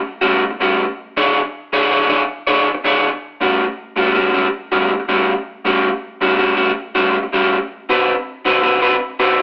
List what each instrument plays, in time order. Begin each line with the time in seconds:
0.21 clean electric guitar A2 G3 C#4 F#4
0.51 muted clean electric guitar stroke
0.60 clean electric guitar A2 G3 C#4 F#4
1.17 clean electric guitar E3 D4 G#4 C#5
1.73 clean electric guitar E3 D4 G#4 C#5
1.91 clean electric guitar E3 D4 G#4 C#5
2.08 clean electric guitar E3 D4 G#4 C#5
2.47 clean electric guitar E3 D4 G#4 C#5
2.75 muted clean electric guitar stroke
2.84 clean electric guitar E3 D4 G#4 C#5
3.41 clean electric guitar A2 G3 C#4 F#4
3.96 clean electric guitar A2 G3 C#4 F#4
4.14 clean electric guitar A2 G3 C#4 F#4
4.33 clean electric guitar A2 G3 C#4 F#4
4.72 clean electric guitar A2 G3 C#4 F#4
5.00 muted clean electric guitar stroke
5.08 clean electric guitar A2 G3 C#4 F#4
5.65 clean electric guitar A2 G3 C#4 F#4
6.21 clean electric guitar A2 G3 C#4 F#4
6.39 clean electric guitar A2 G3 C#4 F#4
6.56 clean electric guitar A2 G3 C#4 F#4
6.95 clean electric guitar A2 G3 C#4 F#4
7.23 muted clean electric guitar stroke
7.33 clean electric guitar A2 G3 C#4 F#4
7.89 clean electric guitar D3 C4 F#4 B4
8.45 clean electric guitar D3 C4 F#4 B4
8.63 clean electric guitar D3 C4 F#4 B4
8.81 clean electric guitar D3 C4 F#4 B4
9.20 clean electric guitar D3 C4 F#4 B4